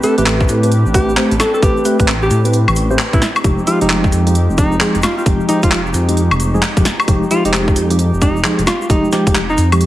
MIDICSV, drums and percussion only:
0, 0, Header, 1, 2, 480
1, 0, Start_track
1, 0, Tempo, 454545
1, 1716, Time_signature, 4, 2, 24, 8
1, 10413, End_track
2, 0, Start_track
2, 0, Title_t, "Drums"
2, 31, Note_on_c, 9, 82, 99
2, 37, Note_on_c, 9, 46, 106
2, 136, Note_off_c, 9, 82, 0
2, 143, Note_off_c, 9, 46, 0
2, 189, Note_on_c, 9, 42, 63
2, 194, Note_on_c, 9, 82, 40
2, 277, Note_on_c, 9, 39, 127
2, 280, Note_off_c, 9, 82, 0
2, 280, Note_on_c, 9, 82, 55
2, 294, Note_off_c, 9, 42, 0
2, 382, Note_off_c, 9, 39, 0
2, 386, Note_off_c, 9, 82, 0
2, 428, Note_on_c, 9, 36, 106
2, 434, Note_on_c, 9, 82, 27
2, 512, Note_off_c, 9, 82, 0
2, 512, Note_on_c, 9, 82, 98
2, 517, Note_on_c, 9, 46, 108
2, 533, Note_off_c, 9, 36, 0
2, 618, Note_off_c, 9, 82, 0
2, 623, Note_off_c, 9, 46, 0
2, 669, Note_on_c, 9, 42, 62
2, 672, Note_on_c, 9, 82, 42
2, 756, Note_off_c, 9, 42, 0
2, 756, Note_on_c, 9, 42, 64
2, 758, Note_off_c, 9, 82, 0
2, 758, Note_on_c, 9, 82, 54
2, 862, Note_off_c, 9, 42, 0
2, 863, Note_off_c, 9, 82, 0
2, 909, Note_on_c, 9, 82, 28
2, 996, Note_on_c, 9, 36, 112
2, 996, Note_on_c, 9, 46, 103
2, 1003, Note_off_c, 9, 82, 0
2, 1003, Note_on_c, 9, 82, 97
2, 1101, Note_off_c, 9, 36, 0
2, 1102, Note_off_c, 9, 46, 0
2, 1109, Note_off_c, 9, 82, 0
2, 1155, Note_on_c, 9, 82, 42
2, 1234, Note_off_c, 9, 82, 0
2, 1234, Note_on_c, 9, 82, 56
2, 1235, Note_on_c, 9, 39, 127
2, 1339, Note_off_c, 9, 82, 0
2, 1341, Note_off_c, 9, 39, 0
2, 1387, Note_on_c, 9, 82, 28
2, 1388, Note_on_c, 9, 42, 51
2, 1476, Note_on_c, 9, 38, 69
2, 1476, Note_on_c, 9, 46, 103
2, 1476, Note_on_c, 9, 76, 59
2, 1480, Note_off_c, 9, 82, 0
2, 1480, Note_on_c, 9, 82, 101
2, 1494, Note_off_c, 9, 42, 0
2, 1581, Note_off_c, 9, 38, 0
2, 1581, Note_off_c, 9, 46, 0
2, 1581, Note_off_c, 9, 76, 0
2, 1585, Note_off_c, 9, 82, 0
2, 1630, Note_on_c, 9, 82, 41
2, 1716, Note_on_c, 9, 36, 127
2, 1716, Note_on_c, 9, 42, 65
2, 1725, Note_off_c, 9, 82, 0
2, 1725, Note_on_c, 9, 82, 61
2, 1821, Note_off_c, 9, 36, 0
2, 1822, Note_off_c, 9, 42, 0
2, 1831, Note_off_c, 9, 82, 0
2, 1870, Note_on_c, 9, 82, 25
2, 1956, Note_off_c, 9, 82, 0
2, 1956, Note_on_c, 9, 46, 102
2, 1956, Note_on_c, 9, 82, 92
2, 2061, Note_off_c, 9, 82, 0
2, 2062, Note_off_c, 9, 46, 0
2, 2103, Note_on_c, 9, 82, 45
2, 2108, Note_on_c, 9, 36, 111
2, 2109, Note_on_c, 9, 42, 62
2, 2190, Note_off_c, 9, 82, 0
2, 2190, Note_on_c, 9, 82, 49
2, 2197, Note_on_c, 9, 39, 126
2, 2213, Note_off_c, 9, 36, 0
2, 2215, Note_off_c, 9, 42, 0
2, 2295, Note_off_c, 9, 82, 0
2, 2303, Note_off_c, 9, 39, 0
2, 2347, Note_on_c, 9, 82, 25
2, 2436, Note_off_c, 9, 82, 0
2, 2436, Note_on_c, 9, 82, 87
2, 2437, Note_on_c, 9, 46, 103
2, 2542, Note_off_c, 9, 82, 0
2, 2543, Note_off_c, 9, 46, 0
2, 2583, Note_on_c, 9, 82, 37
2, 2589, Note_on_c, 9, 42, 64
2, 2671, Note_off_c, 9, 82, 0
2, 2671, Note_on_c, 9, 82, 50
2, 2677, Note_off_c, 9, 42, 0
2, 2677, Note_on_c, 9, 42, 64
2, 2777, Note_off_c, 9, 82, 0
2, 2783, Note_off_c, 9, 42, 0
2, 2830, Note_on_c, 9, 76, 80
2, 2834, Note_on_c, 9, 82, 27
2, 2913, Note_off_c, 9, 82, 0
2, 2913, Note_on_c, 9, 82, 93
2, 2918, Note_on_c, 9, 46, 101
2, 2935, Note_off_c, 9, 76, 0
2, 3018, Note_off_c, 9, 82, 0
2, 3024, Note_off_c, 9, 46, 0
2, 3070, Note_on_c, 9, 82, 38
2, 3157, Note_off_c, 9, 82, 0
2, 3157, Note_on_c, 9, 39, 125
2, 3157, Note_on_c, 9, 82, 52
2, 3263, Note_off_c, 9, 39, 0
2, 3263, Note_off_c, 9, 82, 0
2, 3308, Note_on_c, 9, 36, 113
2, 3310, Note_on_c, 9, 42, 49
2, 3314, Note_on_c, 9, 82, 27
2, 3397, Note_on_c, 9, 38, 66
2, 3397, Note_on_c, 9, 46, 98
2, 3403, Note_off_c, 9, 82, 0
2, 3403, Note_on_c, 9, 82, 101
2, 3414, Note_off_c, 9, 36, 0
2, 3415, Note_off_c, 9, 42, 0
2, 3503, Note_off_c, 9, 38, 0
2, 3503, Note_off_c, 9, 46, 0
2, 3508, Note_off_c, 9, 82, 0
2, 3546, Note_on_c, 9, 82, 44
2, 3549, Note_on_c, 9, 76, 82
2, 3636, Note_on_c, 9, 36, 120
2, 3637, Note_on_c, 9, 42, 66
2, 3639, Note_off_c, 9, 82, 0
2, 3639, Note_on_c, 9, 82, 57
2, 3654, Note_off_c, 9, 76, 0
2, 3742, Note_off_c, 9, 36, 0
2, 3742, Note_off_c, 9, 42, 0
2, 3745, Note_off_c, 9, 82, 0
2, 3783, Note_on_c, 9, 82, 24
2, 3876, Note_on_c, 9, 46, 104
2, 3881, Note_off_c, 9, 82, 0
2, 3881, Note_on_c, 9, 82, 92
2, 3982, Note_off_c, 9, 46, 0
2, 3986, Note_off_c, 9, 82, 0
2, 4027, Note_on_c, 9, 42, 67
2, 4035, Note_on_c, 9, 82, 39
2, 4111, Note_off_c, 9, 82, 0
2, 4111, Note_on_c, 9, 82, 52
2, 4115, Note_on_c, 9, 39, 120
2, 4133, Note_off_c, 9, 42, 0
2, 4217, Note_off_c, 9, 82, 0
2, 4220, Note_off_c, 9, 39, 0
2, 4267, Note_on_c, 9, 36, 105
2, 4268, Note_on_c, 9, 82, 26
2, 4355, Note_on_c, 9, 46, 106
2, 4356, Note_off_c, 9, 82, 0
2, 4356, Note_on_c, 9, 82, 95
2, 4373, Note_off_c, 9, 36, 0
2, 4461, Note_off_c, 9, 46, 0
2, 4461, Note_off_c, 9, 82, 0
2, 4507, Note_on_c, 9, 42, 67
2, 4514, Note_on_c, 9, 82, 42
2, 4594, Note_off_c, 9, 82, 0
2, 4594, Note_on_c, 9, 82, 55
2, 4595, Note_off_c, 9, 42, 0
2, 4595, Note_on_c, 9, 42, 68
2, 4700, Note_off_c, 9, 82, 0
2, 4701, Note_off_c, 9, 42, 0
2, 4753, Note_on_c, 9, 82, 28
2, 4835, Note_on_c, 9, 46, 103
2, 4836, Note_off_c, 9, 82, 0
2, 4836, Note_on_c, 9, 36, 104
2, 4836, Note_on_c, 9, 82, 84
2, 4941, Note_off_c, 9, 36, 0
2, 4941, Note_off_c, 9, 46, 0
2, 4941, Note_off_c, 9, 82, 0
2, 4984, Note_on_c, 9, 82, 38
2, 5075, Note_on_c, 9, 39, 121
2, 5080, Note_off_c, 9, 82, 0
2, 5080, Note_on_c, 9, 82, 54
2, 5181, Note_off_c, 9, 39, 0
2, 5185, Note_off_c, 9, 82, 0
2, 5226, Note_on_c, 9, 42, 53
2, 5228, Note_on_c, 9, 82, 24
2, 5309, Note_off_c, 9, 82, 0
2, 5309, Note_on_c, 9, 82, 99
2, 5315, Note_on_c, 9, 38, 64
2, 5315, Note_on_c, 9, 46, 100
2, 5315, Note_on_c, 9, 76, 63
2, 5331, Note_off_c, 9, 42, 0
2, 5415, Note_off_c, 9, 82, 0
2, 5420, Note_off_c, 9, 38, 0
2, 5420, Note_off_c, 9, 46, 0
2, 5420, Note_off_c, 9, 76, 0
2, 5473, Note_on_c, 9, 82, 38
2, 5555, Note_on_c, 9, 36, 119
2, 5555, Note_on_c, 9, 42, 69
2, 5559, Note_off_c, 9, 82, 0
2, 5559, Note_on_c, 9, 82, 51
2, 5660, Note_off_c, 9, 42, 0
2, 5661, Note_off_c, 9, 36, 0
2, 5664, Note_off_c, 9, 82, 0
2, 5706, Note_on_c, 9, 82, 24
2, 5794, Note_on_c, 9, 46, 108
2, 5801, Note_off_c, 9, 82, 0
2, 5801, Note_on_c, 9, 82, 88
2, 5900, Note_off_c, 9, 46, 0
2, 5907, Note_off_c, 9, 82, 0
2, 5938, Note_on_c, 9, 82, 41
2, 5947, Note_on_c, 9, 36, 104
2, 5947, Note_on_c, 9, 42, 70
2, 6033, Note_off_c, 9, 82, 0
2, 6033, Note_on_c, 9, 82, 52
2, 6035, Note_on_c, 9, 39, 119
2, 6052, Note_off_c, 9, 36, 0
2, 6052, Note_off_c, 9, 42, 0
2, 6139, Note_off_c, 9, 82, 0
2, 6141, Note_off_c, 9, 39, 0
2, 6191, Note_on_c, 9, 82, 25
2, 6271, Note_off_c, 9, 82, 0
2, 6271, Note_on_c, 9, 82, 88
2, 6275, Note_on_c, 9, 46, 113
2, 6376, Note_off_c, 9, 82, 0
2, 6380, Note_off_c, 9, 46, 0
2, 6428, Note_on_c, 9, 42, 70
2, 6437, Note_on_c, 9, 82, 34
2, 6516, Note_off_c, 9, 42, 0
2, 6516, Note_on_c, 9, 42, 71
2, 6525, Note_off_c, 9, 82, 0
2, 6525, Note_on_c, 9, 82, 51
2, 6622, Note_off_c, 9, 42, 0
2, 6631, Note_off_c, 9, 82, 0
2, 6667, Note_on_c, 9, 76, 84
2, 6670, Note_on_c, 9, 82, 27
2, 6756, Note_on_c, 9, 46, 107
2, 6766, Note_off_c, 9, 82, 0
2, 6766, Note_on_c, 9, 82, 99
2, 6773, Note_off_c, 9, 76, 0
2, 6861, Note_off_c, 9, 46, 0
2, 6871, Note_off_c, 9, 82, 0
2, 6914, Note_on_c, 9, 82, 38
2, 6996, Note_on_c, 9, 39, 114
2, 7001, Note_off_c, 9, 82, 0
2, 7001, Note_on_c, 9, 82, 51
2, 7101, Note_off_c, 9, 39, 0
2, 7107, Note_off_c, 9, 82, 0
2, 7147, Note_on_c, 9, 36, 109
2, 7148, Note_on_c, 9, 42, 57
2, 7155, Note_on_c, 9, 82, 25
2, 7236, Note_on_c, 9, 38, 64
2, 7236, Note_on_c, 9, 46, 104
2, 7239, Note_off_c, 9, 82, 0
2, 7239, Note_on_c, 9, 82, 94
2, 7253, Note_off_c, 9, 36, 0
2, 7253, Note_off_c, 9, 42, 0
2, 7341, Note_off_c, 9, 38, 0
2, 7341, Note_off_c, 9, 46, 0
2, 7345, Note_off_c, 9, 82, 0
2, 7388, Note_on_c, 9, 76, 86
2, 7397, Note_on_c, 9, 82, 36
2, 7476, Note_off_c, 9, 82, 0
2, 7476, Note_on_c, 9, 36, 112
2, 7476, Note_on_c, 9, 42, 68
2, 7476, Note_on_c, 9, 82, 50
2, 7494, Note_off_c, 9, 76, 0
2, 7581, Note_off_c, 9, 36, 0
2, 7582, Note_off_c, 9, 42, 0
2, 7582, Note_off_c, 9, 82, 0
2, 7636, Note_on_c, 9, 82, 27
2, 7717, Note_on_c, 9, 46, 110
2, 7721, Note_off_c, 9, 82, 0
2, 7721, Note_on_c, 9, 82, 81
2, 7823, Note_off_c, 9, 46, 0
2, 7826, Note_off_c, 9, 82, 0
2, 7869, Note_on_c, 9, 42, 68
2, 7869, Note_on_c, 9, 82, 35
2, 7956, Note_on_c, 9, 39, 114
2, 7966, Note_off_c, 9, 82, 0
2, 7966, Note_on_c, 9, 82, 54
2, 7975, Note_off_c, 9, 42, 0
2, 8062, Note_off_c, 9, 39, 0
2, 8071, Note_off_c, 9, 82, 0
2, 8108, Note_on_c, 9, 36, 99
2, 8111, Note_on_c, 9, 82, 24
2, 8195, Note_on_c, 9, 46, 115
2, 8198, Note_off_c, 9, 82, 0
2, 8198, Note_on_c, 9, 82, 82
2, 8213, Note_off_c, 9, 36, 0
2, 8301, Note_off_c, 9, 46, 0
2, 8303, Note_off_c, 9, 82, 0
2, 8347, Note_on_c, 9, 42, 72
2, 8355, Note_on_c, 9, 82, 39
2, 8436, Note_off_c, 9, 42, 0
2, 8436, Note_on_c, 9, 42, 69
2, 8440, Note_off_c, 9, 82, 0
2, 8440, Note_on_c, 9, 82, 56
2, 8542, Note_off_c, 9, 42, 0
2, 8546, Note_off_c, 9, 82, 0
2, 8594, Note_on_c, 9, 82, 26
2, 8676, Note_off_c, 9, 82, 0
2, 8676, Note_on_c, 9, 36, 97
2, 8676, Note_on_c, 9, 46, 107
2, 8676, Note_on_c, 9, 82, 84
2, 8782, Note_off_c, 9, 36, 0
2, 8782, Note_off_c, 9, 46, 0
2, 8782, Note_off_c, 9, 82, 0
2, 8832, Note_on_c, 9, 82, 40
2, 8917, Note_on_c, 9, 39, 119
2, 8920, Note_off_c, 9, 82, 0
2, 8920, Note_on_c, 9, 82, 51
2, 9022, Note_off_c, 9, 39, 0
2, 9025, Note_off_c, 9, 82, 0
2, 9068, Note_on_c, 9, 42, 56
2, 9074, Note_on_c, 9, 82, 26
2, 9155, Note_off_c, 9, 82, 0
2, 9155, Note_on_c, 9, 82, 79
2, 9156, Note_on_c, 9, 38, 65
2, 9156, Note_on_c, 9, 46, 108
2, 9156, Note_on_c, 9, 76, 63
2, 9174, Note_off_c, 9, 42, 0
2, 9260, Note_off_c, 9, 82, 0
2, 9262, Note_off_c, 9, 38, 0
2, 9262, Note_off_c, 9, 46, 0
2, 9262, Note_off_c, 9, 76, 0
2, 9310, Note_on_c, 9, 82, 39
2, 9396, Note_on_c, 9, 36, 120
2, 9397, Note_on_c, 9, 42, 69
2, 9398, Note_off_c, 9, 82, 0
2, 9398, Note_on_c, 9, 82, 54
2, 9501, Note_off_c, 9, 36, 0
2, 9503, Note_off_c, 9, 42, 0
2, 9503, Note_off_c, 9, 82, 0
2, 9551, Note_on_c, 9, 82, 28
2, 9631, Note_off_c, 9, 82, 0
2, 9631, Note_on_c, 9, 82, 86
2, 9637, Note_on_c, 9, 38, 34
2, 9637, Note_on_c, 9, 46, 115
2, 9736, Note_off_c, 9, 82, 0
2, 9742, Note_off_c, 9, 38, 0
2, 9742, Note_off_c, 9, 46, 0
2, 9786, Note_on_c, 9, 82, 36
2, 9787, Note_on_c, 9, 36, 101
2, 9788, Note_on_c, 9, 42, 69
2, 9873, Note_off_c, 9, 82, 0
2, 9873, Note_on_c, 9, 82, 53
2, 9876, Note_on_c, 9, 39, 117
2, 9893, Note_off_c, 9, 36, 0
2, 9894, Note_off_c, 9, 42, 0
2, 9979, Note_off_c, 9, 82, 0
2, 9981, Note_off_c, 9, 39, 0
2, 10026, Note_on_c, 9, 82, 24
2, 10112, Note_off_c, 9, 82, 0
2, 10112, Note_on_c, 9, 82, 87
2, 10116, Note_on_c, 9, 46, 118
2, 10218, Note_off_c, 9, 82, 0
2, 10221, Note_off_c, 9, 46, 0
2, 10268, Note_on_c, 9, 42, 71
2, 10268, Note_on_c, 9, 76, 63
2, 10279, Note_on_c, 9, 82, 38
2, 10353, Note_off_c, 9, 82, 0
2, 10353, Note_on_c, 9, 82, 48
2, 10356, Note_off_c, 9, 42, 0
2, 10356, Note_on_c, 9, 42, 70
2, 10373, Note_off_c, 9, 76, 0
2, 10413, Note_off_c, 9, 42, 0
2, 10413, Note_off_c, 9, 82, 0
2, 10413, End_track
0, 0, End_of_file